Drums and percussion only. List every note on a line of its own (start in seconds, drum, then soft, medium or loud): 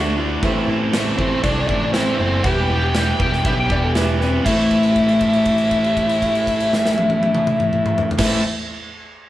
0.43 kick loud
0.43 crash medium
0.93 snare loud
0.93 crash medium
1.19 kick medium
1.44 kick loud
1.44 crash medium
1.69 kick medium
1.94 snare loud
1.94 crash medium
2.44 kick loud
2.44 crash medium
2.95 snare loud
2.95 crash medium
3.20 kick loud
3.33 snare soft
3.45 kick loud
3.45 crash medium
3.70 kick medium
3.95 snare loud
3.95 crash medium
4.21 snare soft
4.46 kick loud
4.46 crash medium
4.71 kick medium
4.71 crash soft
4.83 crash soft
4.96 kick medium
4.96 crash soft
5.09 crash soft
5.21 kick medium
5.21 crash medium
5.33 crash soft
5.45 kick medium
5.45 crash soft
5.58 crash medium
5.71 kick medium
5.71 crash soft
5.84 crash soft
5.97 kick medium
5.97 crash soft
6.09 crash medium
6.22 kick medium
6.22 crash medium
6.35 crash soft
6.47 kick medium
6.47 crash medium
6.60 crash medium
6.73 snare medium
6.85 snare loud
6.98 high tom loud
7.10 high tom loud
7.23 high tom loud
7.35 mid tom loud
7.47 mid tom loud
7.60 mid tom loud
7.73 mid tom medium
7.86 mid tom loud
7.98 floor tom loud
8.11 floor tom loud
8.18 kick loud
8.18 snare loud
8.18 crash loud